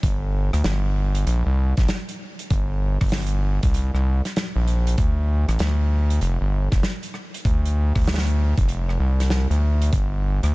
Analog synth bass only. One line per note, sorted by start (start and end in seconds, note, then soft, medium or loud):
0.03 0.50 G1 loud
0.53 0.63 D2 loud
0.65 1.25 G1 medium
1.27 1.43 A#1 medium
1.46 1.74 C2 medium
1.78 1.87 A#1 loud
2.51 2.98 G1 loud
3.01 3.60 G1 loud
3.63 3.91 C2 medium
3.94 4.22 C2 medium
4.56 4.96 A#1 loud
4.98 5.45 D2 loud
5.48 5.58 A1 loud
5.60 6.20 D2 loud
6.22 6.38 F1 loud
6.41 6.69 G1 medium
6.72 6.81 F1 medium
7.45 7.93 D2 loud
7.96 8.54 D2 loud
8.58 8.98 F1 loud
9.00 9.47 C2 medium
9.50 9.91 D2 loud
9.93 10.40 G1 loud
10.43 10.53 D2 loud